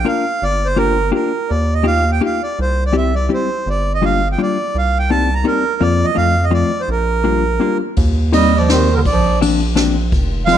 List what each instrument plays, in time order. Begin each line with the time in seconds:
0.05 hollow-body jazz guitar A#3 D4 F4 A#4, accordion F5
0.42 analog synth bass G1, accordion D5
0.65 accordion C5
0.76 hollow-body jazz guitar A#3 D4 F4 G4, accordion A#4
1.11 hollow-body jazz guitar A#3 D4 F4 G4, accordion A#4
1.50 analog synth bass D#2, accordion D5
1.74 accordion D#5
1.83 hollow-body jazz guitar A#3 D#4 F4 G4, accordion F5
2.12 accordion G5
2.21 hollow-body jazz guitar A#3 D#4 F4 G4
2.25 accordion F5
2.43 accordion D5
2.59 analog synth bass C2, accordion C5
2.86 accordion D5
2.93 hollow-body jazz guitar G3 C4 E4 G4
2.98 accordion E5
3.15 accordion D5
3.29 hollow-body jazz guitar G3 C4 E4 G4
3.34 accordion C5
3.66 analog synth bass G1, accordion D5
3.94 accordion D#5
4.02 hollow-body jazz guitar G3 A#3 D4 F4, accordion F5
4.32 accordion G5
4.38 hollow-body jazz guitar G3 A#3 D4 F4
4.42 accordion D5
4.75 analog synth bass C2, accordion F5
4.99 accordion G5
5.10 hollow-body jazz guitar G3 A#3 C4 D#4, accordion A5
5.34 accordion A#5
5.44 hollow-body jazz guitar G3 A#3 C4 D#4, accordion A#4
5.80 analog synth bass F2, hollow-body jazz guitar F3 A#3 C4 F4, accordion D5
6.04 accordion D#5
6.15 analog synth bass F2, hollow-body jazz guitar F3 A3 C4 F4, accordion F5
6.44 accordion D#5
6.51 hollow-body jazz guitar F3 A3 C4 F4, accordion D5
6.81 accordion C5
6.88 analog synth bass A#1, accordion A#4
7.24 hollow-body jazz guitar G3 A#3 D4 F4
7.60 hollow-body jazz guitar G3 A#3 D4 F4
7.97 analog synth bass D#2, kick, ride
8.32 hollow-body jazz guitar G3 A#3 C4 D#4, clarinet G3, accordion D#5, ride
8.57 clarinet F3, accordion D5
8.69 clarinet D#3, hollow-body jazz guitar G3 A#3 C4 D#4, accordion C5, snare, ride
8.94 clarinet D3, accordion A#4
9.06 analog synth bass A#1, accordion D5, kick, ride
9.10 clarinet F3
9.41 hollow-body jazz guitar F3 A#3 C4 D4, ride
9.75 hollow-body jazz guitar F3 A#3 C4 D4, snare, ride
10.12 analog synth bass F1, kick, ride
10.46 hollow-body jazz guitar F3 G#3 C4 F4, clarinet G#3, accordion F5, ride